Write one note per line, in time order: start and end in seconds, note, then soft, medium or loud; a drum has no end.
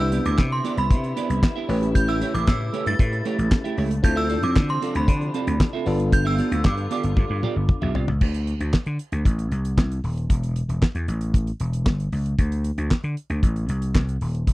0.00 0.18 C2 loud
0.00 1.65 D3 medium
0.00 1.65 B3 medium
0.00 0.11 B3 medium
0.00 1.67 C4 medium
0.00 1.65 D4 medium
0.00 1.65 E4 medium
0.00 4.00 E4 medium
0.00 0.12 E4 medium
0.00 0.12 G4 medium
0.00 1.65 G4 medium
0.00 1.66 B4 medium
0.00 0.13 E5 medium
0.00 0.24 E6 loud
0.12 0.29 B3 medium
0.12 0.25 E4 medium
0.12 0.25 G4 medium
0.12 0.24 D5 medium
0.12 closed hi-hat medium
0.25 0.36 D2 medium
0.25 0.53 D6 medium
0.25 muted clean electric guitar stroke soft
0.25 closed hi-hat medium
0.38 0.60 C3 loud
0.38 kick loud
0.38 snare loud
0.38 clap medium
0.51 0.64 C6 medium
0.51 muted clean electric guitar stroke medium
0.64 0.85 B3 loud
0.64 0.77 E4 medium
0.64 0.77 G4 loud
0.64 0.76 D5 loud
0.64 closed hi-hat medium
0.77 0.92 C2 medium
0.77 1.65 B5 medium
0.77 muted clean electric guitar stroke soft
0.77 closed hi-hat medium
0.91 1.12 C3 loud
0.91 kick loud
0.91 closed hi-hat medium
1.04 muted clean electric guitar stroke soft
1.04 closed hi-hat soft
1.16 1.37 B3 medium
1.16 1.29 E4 medium
1.16 1.29 G4 medium
1.16 1.28 D5 medium
1.16 closed hi-hat medium
1.29 1.40 C2 medium
1.29 muted clean electric guitar stroke medium
1.29 closed hi-hat medium
1.43 muted clean electric guitar stroke soft
1.43 kick loud
1.43 snare loud
1.43 clap medium
1.56 1.68 B3 medium
1.56 1.68 E4 medium
1.56 1.68 G4 medium
1.56 1.70 E5 medium
1.68 2.22 A1 loud
1.68 4.01 C#3 medium
1.68 4.01 G3 medium
1.68 1.85 A3 medium
1.68 5.82 A3 medium
1.68 3.73 C#4 medium
1.68 3.74 E4 medium
1.68 1.82 E4 medium
1.68 3.74 G4 medium
1.68 1.81 G4 medium
1.68 3.74 B4 medium
1.68 1.81 C#5 medium
1.68 open hi-hat medium
1.82 muted clean electric guitar stroke soft
1.82 closed hi-hat medium
1.95 2.09 G6 loud
1.95 muted clean electric guitar stroke soft
1.95 kick loud
1.95 closed hi-hat loud
2.08 2.20 A3 medium
2.08 2.20 E4 medium
2.08 2.21 G4 medium
2.08 2.22 E5 medium
2.08 2.20 E6 medium
2.08 closed hi-hat soft
2.21 2.38 A3 medium
2.21 2.34 E4 medium
2.21 2.34 G4 medium
2.21 2.33 C#5 medium
2.21 closed hi-hat medium
2.34 2.45 A1 medium
2.34 2.48 D6 medium
2.34 muted clean electric guitar stroke soft
2.34 closed hi-hat medium
2.48 2.69 A2 medium
2.48 2.88 E6 medium
2.48 kick loud
2.48 snare loud
2.48 clap medium
2.60 muted clean electric guitar stroke soft
2.73 2.94 A3 loud
2.73 2.86 E4 loud
2.73 2.86 G4 medium
2.73 2.85 C#5 loud
2.73 closed hi-hat medium
2.86 2.97 G2 medium
2.86 3.74 A6 loud
2.86 muted clean electric guitar stroke soft
2.86 closed hi-hat medium
2.99 3.20 A2 loud
2.99 kick loud
2.99 closed hi-hat medium
3.12 muted clean electric guitar stroke medium
3.12 closed hi-hat soft
3.25 3.46 A3 medium
3.25 3.38 E4 medium
3.25 3.38 G4 loud
3.25 3.37 C#5 loud
3.25 closed hi-hat medium
3.38 3.49 A1 medium
3.38 muted clean electric guitar stroke medium
3.38 closed hi-hat medium
3.51 muted clean electric guitar stroke soft
3.51 kick loud
3.51 snare loud
3.51 clap loud
3.64 3.76 A3 medium
3.64 3.76 E4 medium
3.64 3.77 G4 medium
3.64 3.78 E5 medium
3.64 closed hi-hat soft
3.77 3.99 C#2 loud
3.77 3.94 A3 medium
3.77 3.90 E4 medium
3.77 3.90 G4 medium
3.77 3.89 C#5 medium
3.77 open hi-hat medium
3.90 muted clean electric guitar stroke soft
3.90 closed hi-hat medium
4.03 4.35 D2 loud
4.03 5.85 C3 medium
4.03 5.85 F3 medium
4.03 5.82 C4 medium
4.03 5.85 D4 medium
4.03 5.83 E4 medium
4.03 5.83 F4 medium
4.03 5.83 A4 medium
4.03 4.18 G6 loud
4.03 muted clean electric guitar stroke soft
4.03 kick loud
4.03 closed hi-hat loud
4.16 4.28 C4 medium
4.16 4.28 F4 medium
4.16 4.29 A4 medium
4.16 4.30 E5 medium
4.16 4.41 E6 loud
4.29 4.46 C4 medium
4.29 4.42 F4 medium
4.29 4.42 A4 medium
4.29 4.41 D5 medium
4.29 closed hi-hat medium
4.43 4.53 F2 medium
4.43 4.70 D6 medium
4.43 muted clean electric guitar stroke soft
4.43 closed hi-hat medium
4.56 4.77 D3 loud
4.56 kick loud
4.56 snare loud
4.56 clap medium
4.69 4.81 C6 loud
4.69 muted clean electric guitar stroke soft
4.69 closed hi-hat soft
4.82 5.03 C4 medium
4.82 4.95 F4 medium
4.82 4.94 A4 medium
4.82 4.94 D5 medium
4.82 closed hi-hat medium
4.95 5.06 D2 medium
4.95 5.83 B5 medium
4.95 muted clean electric guitar stroke soft
4.95 closed hi-hat medium
5.08 5.29 D3 loud
5.08 muted clean electric guitar stroke medium
5.08 kick loud
5.08 closed hi-hat medium
5.21 muted clean electric guitar stroke soft
5.21 closed hi-hat soft
5.34 5.55 C4 medium
5.34 5.47 F4 medium
5.34 5.46 A4 medium
5.34 5.46 D5 medium
5.34 closed hi-hat medium
5.47 5.58 D2 loud
5.47 muted clean electric guitar stroke medium
5.47 closed hi-hat medium
5.60 muted clean electric guitar stroke medium
5.60 kick loud
5.60 snare loud
5.60 clap medium
5.73 5.86 C4 medium
5.73 5.85 F4 medium
5.73 5.86 A4 medium
5.73 5.87 E5 medium
5.86 6.39 G1 loud
5.86 8.19 D3 medium
5.86 8.19 G3 medium
5.86 7.91 B3 medium
5.86 6.03 B3 medium
5.86 8.19 B3 medium
5.86 7.91 D4 medium
5.86 7.91 F4 medium
5.86 5.99 F4 medium
5.86 8.19 F4 medium
5.86 5.99 G4 medium
5.86 7.92 A4 medium
5.86 5.98 D5 medium
5.86 open hi-hat medium
5.99 muted clean electric guitar stroke soft
5.99 closed hi-hat medium
6.12 6.26 G6 loud
6.12 muted clean electric guitar stroke soft
6.12 kick loud
6.12 closed hi-hat loud
6.25 6.37 B3 medium
6.25 6.38 F4 medium
6.25 6.38 G4 medium
6.25 6.39 E5 medium
6.25 6.66 E6 loud
6.38 6.55 B3 medium
6.38 6.51 F4 medium
6.38 6.51 G4 medium
6.38 6.50 D5 medium
6.38 closed hi-hat medium
6.51 6.62 D2 medium
6.51 muted clean electric guitar stroke soft
6.51 closed hi-hat medium
6.65 6.86 G2 loud
6.65 6.91 D6 medium
6.65 kick loud
6.65 snare loud
6.65 clap medium
6.77 muted clean electric guitar stroke soft
6.77 closed hi-hat soft
6.90 7.12 B3 medium
6.90 7.03 F4 loud
6.90 7.03 G4 loud
6.90 7.02 D5 loud
6.90 7.92 D6 medium
6.90 closed hi-hat medium
7.03 7.14 G1 medium
7.03 muted clean electric guitar stroke soft
7.03 closed hi-hat medium
7.17 7.27 G2 loud
7.17 kick loud
7.17 high tom medium
7.30 7.40 G2 medium
7.30 muted clean electric guitar stroke soft
7.43 7.64 B3 medium
7.43 7.56 F4 loud
7.43 7.55 G4 medium
7.43 7.55 D5 loud
7.43 mid tom medium
7.56 7.67 G1 medium
7.56 muted clean electric guitar stroke medium
7.69 muted clean electric guitar stroke soft
7.69 kick loud
7.69 mid tom medium
7.82 7.93 B1 medium
7.82 7.94 B3 medium
7.82 7.94 F4 medium
7.82 7.94 G4 medium
7.82 7.96 E5 medium
7.82 mid tom medium
7.95 8.06 C2 medium
7.95 8.11 B3 medium
7.95 8.08 F4 medium
7.95 8.07 G4 medium
7.95 8.07 D5 medium
7.95 floor tom loud
8.08 8.19 C#2 medium
8.08 muted clean electric guitar stroke soft
8.08 floor tom loud
8.21 8.53 D2 loud
8.21 kick loud
8.21 crash medium
8.34 closed hi-hat medium
8.47 closed hi-hat medium
8.60 8.71 D2 loud
8.60 closed hi-hat medium
8.73 kick medium
8.73 snare loud
8.73 clap medium
8.86 8.97 D3 medium
8.86 closed hi-hat soft
8.99 closed hi-hat medium
9.12 9.23 D2 medium
9.12 closed hi-hat medium
9.25 9.47 A1 loud
9.25 kick loud
9.25 closed hi-hat medium
9.39 closed hi-hat medium
9.51 9.73 C2 medium
9.51 closed hi-hat medium
9.65 closed hi-hat medium
9.78 9.99 C2 medium
9.78 kick loud
9.78 snare loud
9.78 clap medium
9.91 closed hi-hat medium
10.04 10.25 D#1 medium
10.04 open hi-hat medium
10.17 closed hi-hat medium
10.30 10.61 E1 loud
10.30 kick loud
10.30 closed hi-hat medium
10.43 closed hi-hat medium
10.56 closed hi-hat medium
10.69 10.79 E1 medium
10.69 closed hi-hat medium
10.82 muted slap bass stroke soft
10.82 kick medium
10.82 snare loud
10.82 clap medium
10.95 11.05 E2 medium
10.95 closed hi-hat soft
11.08 11.50 A1 loud
11.08 closed hi-hat medium
11.21 closed hi-hat medium
11.34 kick loud
11.34 closed hi-hat medium
11.47 closed hi-hat soft
11.60 11.86 E1 medium
11.60 closed hi-hat medium
11.73 closed hi-hat medium
11.86 12.07 G1 medium
11.86 kick loud
11.86 snare loud
11.86 clap medium
12.00 closed hi-hat medium
12.12 12.33 C#2 medium
12.12 open hi-hat medium
12.26 closed hi-hat medium
12.38 12.70 D2 loud
12.38 kick loud
12.38 closed hi-hat medium
12.52 closed hi-hat medium
12.64 closed hi-hat medium
12.78 12.88 D2 loud
12.78 closed hi-hat medium
12.91 kick medium
12.91 snare loud
12.91 clap medium
13.04 13.14 D3 medium
13.04 closed hi-hat soft
13.17 closed hi-hat medium
13.30 13.40 D2 medium
13.30 closed hi-hat soft
13.43 13.64 A1 loud
13.43 kick loud
13.43 closed hi-hat medium
13.56 closed hi-hat soft
13.69 13.90 C2 medium
13.69 closed hi-hat medium
13.82 closed hi-hat medium
13.95 14.16 C2 medium
13.95 kick loud
13.95 snare loud
13.95 clap medium
14.09 closed hi-hat medium
14.21 14.42 D#1 medium
14.21 open hi-hat medium
14.35 closed hi-hat medium
14.47 14.53 E1 loud
14.47 kick loud
14.47 closed hi-hat medium